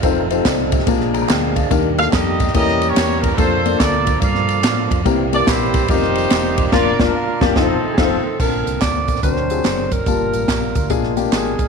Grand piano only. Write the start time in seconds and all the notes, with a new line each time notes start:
0.04 C4 D#4 F4 A4 C5
0.31 C4 D#4 F4 G4 C5
0.36 A4
0.46 F4 D5
0.73 G4 D#5
0.88 A#2 A#3 D4 F4 G#4 A#4
1.14 A#5
1.22 A#5
1.30 G5
1.57 F5
1.71 D#3 A#3 D4 D#4 G4 A#4
1.99 A#3 D4 D#4 F#4 A4
2.04 G4
2.54 E3 A#3 C#4 E4 G4 A4
2.60 A#4
3.39 A#3 D4 F4 A4 A#4
3.65 A#3 D4 F4 A4 D5
5.05 C3 A#3 C4 E4 G4 A#4
5.33 A#3 C4 E4 G4 A#4
5.90 C4 D#4 F4 G4 A#4
6.73 A#3 D4 F4 A#4 D5
7.00 A#3 D4 F4 A#4 D5
7.42 A#3 D4 F4 A#4 D5
7.56 C4 D#4 F4 A4
7.62 C5
7.99 C4 D#4 F4 A4
8.04 C5
8.40 A#2 C4 D4 A#4 A5
9.24 D3 C4 D4 F#4 A#4
9.51 C4 D4 F4 G#4
9.56 F#4
10.08 G2 A#3 F4 G4 A5
10.90 A#2 A#3 D4 F4 G#4
11.17 A#3 D4 F4 G4